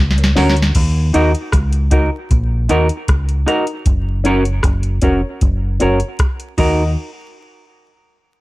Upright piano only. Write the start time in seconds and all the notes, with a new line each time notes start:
0.17 A#4 C#5
0.35 C#4 F#4 A#4 C#5
1.13 D#4 F#4 A#4 D#5
1.91 D#4 F#4 A#4 D#5
2.69 D#4 F#4 A#4 D#5
3.46 D#4 F#4 A#4 D#5
4.24 C#4 F#4 A#4 C#5
5.02 C#4 F#4 A#4 C#5
5.80 C#4 F#4 A#4 C#5
6.58 D#4 F#4 A#4 D#5